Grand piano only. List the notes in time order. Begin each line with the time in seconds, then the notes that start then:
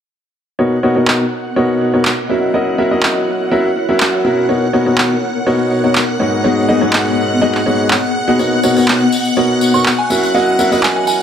0.59 B2 B3 D#4 F#4 A#4 C#5
0.83 B2 B3 D#4 F#4 A#4 C#5
0.96 B2 B3 D#4 F#4 A#4 C#5
1.56 B2 B3 D#4 F#4 A#4 C#5
1.94 B2 B3 D#4 F#4 A#4 C#5
2.29 F#3 C#4 E4 F#4 A#4 E5
2.54 F#3 C#4 E4 F#4 A#4 D#5
2.78 F#3 C#4 E4 F#4 A#4 E5
2.91 F#3 C#4 E4 F#4 A#4 D#5
3.51 F#3 C#4 E4 F#4 A#4 E5
3.89 F#3 C#4 E4 F#4 A#4 E5
4.25 B2 C#4 E4 F#4 A#4 E5
4.49 B2 B3 D#4 F#4 A#4 C#5
4.73 B2 B3 D#4 F#4 A#4 C#5
4.86 B2 B3 D#4 F#4 A#4 C#5
5.46 B2 B3 D#4 F#4 A#4 C#5
5.84 B2 B3 D#4 F#4 A#4 C#5
6.20 G#2 B3 D#4 F#4 A#4 C#5
6.44 G#2 B3 D#4 F#4 G#4 C#5
6.68 G#2 B3 D#4 F#4 G#4 D#5
6.81 G#2 B3 D#4 F#4 G#4 C#5
7.42 G#2 B3 D#4 F#4 G#4 D#5
7.66 G#2 B3 D#4 F#4 G#4 C#5
8.28 B2 B3 D#4 F#4 G#4 F#5
8.39 B2 B3 D#4 F#4 A#4 C#5
8.64 B2 B3 D#4 F#4 A#4 C#5
8.76 B2 B3 D#4 F#4 A#4 C#5
9.37 B2 B3 D#4 F#4 A#4 C#5
9.74 B2 B3 D#4 F#4 A#4 C#5
10.10 F#3 C#4 E4 F#4 A#4 E5
10.34 F#3 C#4 E4 F#4 A#4 D#5
10.59 F#3 C#4 E4 F#4 A#4 E5
10.72 F#3 C#4 E4 F#4 A#4 D#5